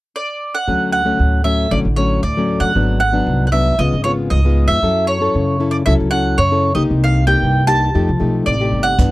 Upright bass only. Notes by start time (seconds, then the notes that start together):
0.68 D2
1.19 D2
1.71 A1
1.85 A1
2.23 D2
2.61 D3
2.75 G#1
3.26 C2
3.79 C#2
3.93 G#1
4.31 C#2
4.68 F2
4.82 F#2
5.35 F#2
5.87 C#2
6.00 C#2
6.38 F#2
6.76 C#2
6.91 C2
7.43 C2
7.95 F2
8.09 C2
8.20 B1
8.47 A1
8.72 G1
8.99 G2